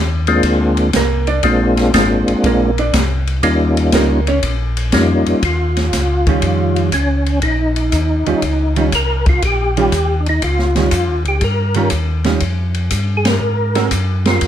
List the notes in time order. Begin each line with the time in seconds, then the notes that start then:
Already playing: D#2
0.27 G#3 A#3 C4 D4 F4, ride
0.43 D2, kick, ride
0.77 ride
0.93 C2 A#3 A#4, kick, snare, hi-hat pedal, ride
1.27 D4 D5, ride
1.43 A#1 G#3 A#3 C4 D4 F4, kick, ride
1.77 snare, ride
1.93 G#1 G#3 A#3 C4 D4 F4, kick, snare, hi-hat pedal, ride
2.27 G#1, ride
2.44 A#1 A#3 A#4, kick, ride
2.78 D4 D5, ride
2.93 C2, kick, snare, hi-hat pedal, ride
3.27 ride
3.43 D#2 G3 A#3 C#4 D#4 F4, kick, ride
3.77 ride
3.92 C#2 A#3 A#4, kick, snare, hi-hat pedal, ride
4.27 C#4 C#5, ride
4.43 A#1, kick, ride
4.77 ride
4.92 F2 G3 A#3 C#4 D#4 F4, kick, snare, hi-hat pedal, ride
5.26 F2, ride
5.42 D#2 F4, kick, ride
5.77 snare, ride
5.93 C#2, kick, snare, hi-hat pedal, ride
6.27 D#3 G3 C#4 F4, kick, ride
6.42 F2, kick, ride
6.76 ride
6.92 C#2 C#4, kick, hi-hat pedal, ride
7.26 ride
7.42 A#1 D#4, kick, ride
7.76 ride
7.92 D#2, kick, hi-hat pedal, ride
8.26 D#2 D#3 G3 C#4 F4, ride
8.42 C#2, kick, ride
8.76 D#3 G3 C#4 F4, ride
8.92 C2 A#4, kick, hi-hat pedal, ride
9.26 F4, kick, ride
9.42 A#1 G4, kick, ride
9.77 D#3 G3 C#4 F4, ride
9.92 D#2, kick, hi-hat pedal, ride
10.20 D4
10.26 D#4, ride
10.42 C#2 F4, kick, ride
10.59 snare
10.75 D#3 G3 C#4 F4, snare, ride
10.91 F2, kick, hi-hat pedal, ride
11.08 D#2
11.25 C#2 G4, ride
11.41 G2 A#4, kick, ride
11.74 D#3 G3 C#4 F4, ride
11.90 D#2, kick, hi-hat pedal, ride
12.24 D#3 G3 C#4 F4, snare, ride
12.40 F2, kick, ride
12.74 ride
12.90 G2, kick, hi-hat pedal, ride
13.17 G#4
13.25 A#4, snare, ride
13.41 G#2
13.75 G#3 C4 F#4 A#4, snare, ride
13.91 F#2, kick, hi-hat pedal, ride
14.25 G#3 C4 F4 A#4, snare, ride
14.41 F2, kick, ride